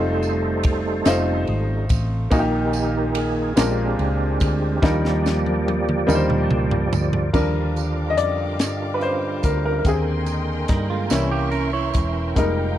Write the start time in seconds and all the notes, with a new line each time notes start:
Already playing: F1 G3 A3 C4 D#4 F4 A4 C5
0.22 ride, tambourine
0.63 kick, ride
1.05 F1 A3 C4 D#4 F4 C5, snare, ride, tambourine
1.47 G#1 G3 A3 D#4, ride
1.89 A1, kick, ride, tambourine
2.31 A#1 A#2 D#3 A#3 D#4 F#4 G4, kick, ride, tambourine
2.39 G4
2.73 ride, tambourine
3.15 G#4, ride
3.56 A#1 A#2 G#3 A#3 C4 D4 F4 G4 A#4, snare, ride, tambourine
3.99 C#2, ride
4.40 D2, kick, ride, tambourine
4.82 D#2 D#3 F3 G3 A#3 D4 D#4 G4 A#4 D5, kick, snare, tambourine
5.05 snare
5.26 snare, tambourine
5.46 high tom
5.68 high tom
5.89 mid tom
6.07 D#2 G3 A#3 D4 D#4 A#4, mid tom, tambourine
6.15 C5
6.30 mid tom
6.50 C#2, mid tom
6.71 floor tom
6.92 D2, floor tom, tambourine
7.13 floor tom
7.32 D#2 D3 F3 G3 D4 F4 A#4 F5 G5 D6, kick, crash, tambourine
7.76 closed hi-hat, tambourine
8.10 D#5
8.17 F2 D5, closed hi-hat
8.59 G2, snare, closed hi-hat, tambourine
8.94 B4
9.01 C5, closed hi-hat
9.43 D2 A#4, kick, closed hi-hat, tambourine
9.65 A#4
9.79 A#4
9.84 D#2 A#3 C4 G4 G#4 D#5 G5 A#5 C6, kick, closed hi-hat, tambourine
10.26 closed hi-hat, tambourine
10.68 G2 G3 D#4, kick, snare, closed hi-hat
10.90 G#3 F4
11.08 C2 E3 G3 A#3 C#4 E4 E5 C6 C#6, snare, closed hi-hat, tambourine
11.32 A#3 G4
11.51 C#4 A#4, closed hi-hat
11.73 E4 C#5
11.94 E1, kick, closed hi-hat, tambourine
12.35 F1 F3 G3 G#3 A#3 D#4 A#4 F5 G5 A#5, kick, closed hi-hat, tambourine